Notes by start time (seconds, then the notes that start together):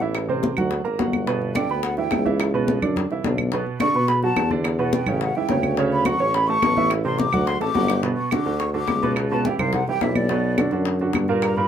Already playing: A1
0.00 E3 E4 E5, high bongo
0.15 high bongo, high conga, claves
0.29 C3 C4 C5, high conga
0.43 high bongo, high conga
0.57 D2 F#3 F#4 F#5, high bongo, low conga, claves
0.71 high bongo, high conga
0.84 G#1 A#3 A#4 A#5, high bongo, high conga
0.98 G1 F#3 F#4 F#5, high bongo, low bongo, high conga
1.13 high bongo, high conga, claves
1.27 B2 B3 B4, high bongo, high conga
1.42 high conga
1.54 D3 D4 D5 G5, high bongo, high conga, claves
1.69 D2 B3 B4 B5, high bongo, high conga
1.83 F#5, high bongo, high conga
1.97 E3 E4 E5 G5, high bongo, high conga
2.11 C#2, high bongo, low bongo, high conga, claves
2.25 E3 E4 E5, high bongo, high conga
2.40 high bongo, high conga, claves
2.54 B2 B3 B4, high conga
2.68 high bongo, high conga
2.82 F#2 D3 D4 D5, high bongo, low conga, claves
2.96 high bongo, high conga, low conga
3.10 C2 E3 E4 E5, high bongo, high conga
3.24 B1 D3 D4 D5, high bongo, low bongo, high conga
3.38 high bongo, high conga, claves
3.52 B2 B3 B4, high bongo, high conga
3.67 high conga
3.80 D3 D4 D5 C#6, high bongo, high conga, claves
3.94 B2 B3 B4 B5, high bongo, high conga
4.08 B5, high bongo, high conga
4.23 F#3 F#4 F#5 A5, high bongo, high conga
4.36 E2, high bongo, low bongo, high conga, claves
4.50 D3 D4 D5, high bongo, high conga
4.64 high bongo, high conga, claves
4.78 B2 B3 B4 F#5, high conga
4.92 G5, high bongo, high conga
5.06 A1 C#3 C#4 C#5, high bongo, low conga, claves
5.21 F#5, high bongo, high conga
5.35 C#2 E3 E4 E5 G5, high bongo, high conga
5.49 D2 C#3 C#4 C#5, high bongo, low bongo, high conga
5.63 high bongo, high conga, claves
5.77 C#3 C#4 C#5, high bongo, high conga
5.92 B5, high conga
6.05 F#3 F#4 F#5 C#6, high bongo, high conga, claves
6.20 A1 C#4 C#5 C#6, high bongo, high conga
6.34 B5, high bongo, high conga
6.47 A3 A4 A5 C#6, high bongo, high conga
6.62 A1, high bongo, low bongo, high conga, claves
6.77 E3 E4 E5, high bongo, high conga
6.90 high bongo, high conga, claves
7.04 C3 C4 C5 C6, high conga
7.18 D6, high bongo, high conga
7.33 D2 F#3 F#4 F#5, high bongo, low conga, claves
7.47 C6, high bongo, high conga
7.60 A1 A3 A4 A5 D6, high bongo, high conga
7.75 G1 F#3 F#4 F#5, high bongo, high conga
7.88 low bongo, claves
8.03 B2 B3 B4, high bongo, high conga
8.17 C#6, high conga
8.30 D3 D4 F#4 D6, high bongo, high conga, claves
8.45 D2 D3 D4 F#4, high bongo, high conga
8.59 C#6, high bongo, high conga
8.73 D3 D4 F#4 D6, high bongo, high conga
8.88 C#2, high bongo, low bongo, high conga, claves
9.03 B2 B3 B4, high bongo, high conga
9.16 high bongo, high conga, claves
9.30 B2 B3 B4 A5, high conga
9.45 E3 E4 G4 G5, high bongo, high conga
9.58 C2 C3 C4 C5 F5, high bongo, low conga, claves
9.73 F#5, high bongo, high conga, low conga
9.87 C2 E3 E4 G4 G5, high bongo, high conga
10.01 B1 E3 E4 G4 E5, high bongo, low bongo, high conga
10.15 D5, high bongo, high conga, claves
10.29 B2 B3 B4, high bongo, high conga
10.44 high conga
10.58 D3 D4 F#4, high bongo, high conga, claves
10.71 F#2 D3 D4 F#4, high bongo, high conga
10.85 high bongo, high conga
10.99 D3 D4 F#4, high bongo, high conga
11.13 G2, high bongo, low bongo, high conga, claves
11.28 A#2 A#3 A#4, high bongo
11.42 A#5, high bongo, high conga, claves
11.56 A#2 A#3 A#4 B5, high conga